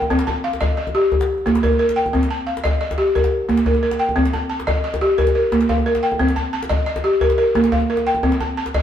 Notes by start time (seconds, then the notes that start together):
Already playing: G5
0.02 djembe tone
0.10 C4, djembe bass
0.19 djembe slap
0.27 A5, djembe tone
0.44 F5
0.53 djembe slap
0.61 D#5, djembe tone, djembe bass
0.77 D#5
0.87 djembe tone
0.95 G4
1.12 djembe bass
1.21 djembe slap, djembe tone
1.38 djembe slap
1.46 A#3, djembe tone
1.55 djembe slap
1.63 A#4, djembe bass
1.72 djembe slap, djembe tone
1.79 A#4
1.89 djembe slap
1.96 G5
2.06 djembe tone
2.13 C4, djembe slap, djembe bass
2.23 djembe slap
2.31 A5
2.47 F5
2.57 djembe slap
2.64 D#5, djembe tone, djembe bass
2.81 D#5
2.91 djembe slap, djembe tone
2.98 G4, djembe slap
3.15 A#4, djembe bass
3.24 djembe slap, djembe tone
3.49 A#3, djembe tone
3.57 djembe slap
3.66 A#4, djembe bass
3.74 djembe slap, djembe tone
3.83 A#4
3.91 djembe slap
3.99 G5
4.09 djembe tone
4.16 C4, djembe bass
4.25 djembe slap
4.33 A5, djembe tone
4.50 A5
4.60 djembe slap
4.67 D#5, djembe tone, djembe bass
4.84 D#5
4.94 djembe slap, djembe tone
5.01 G4
5.18 A#4, djembe bass
5.27 djembe slap, djembe tone
5.35 A#4
5.44 djembe slap
5.52 A#3, djembe tone
5.61 djembe slap
5.69 F5, djembe bass
5.78 djembe slap, djembe tone
5.86 A#4
5.95 djembe slap
6.03 G5
6.12 djembe tone
6.19 C4, djembe bass
6.28 djembe slap
6.36 A5, djembe tone
6.53 A5
6.63 djembe slap
6.69 D#5, djembe tone, djembe bass
6.86 D#5
6.96 djembe slap, djembe tone
7.04 G4
7.21 A#4, djembe bass
7.30 djembe slap, djembe tone
7.38 A#4
7.47 djembe slap
7.55 A#3, djembe tone
7.64 djembe slap
7.72 F5, djembe bass
7.80 djembe slap, djembe tone
7.90 A#4
7.97 djembe slap
8.07 G5
8.15 djembe tone
8.23 C4, djembe bass
8.32 djembe slap
8.40 A5, djembe tone
8.57 A5
8.66 djembe slap
8.74 D#5, djembe tone, djembe bass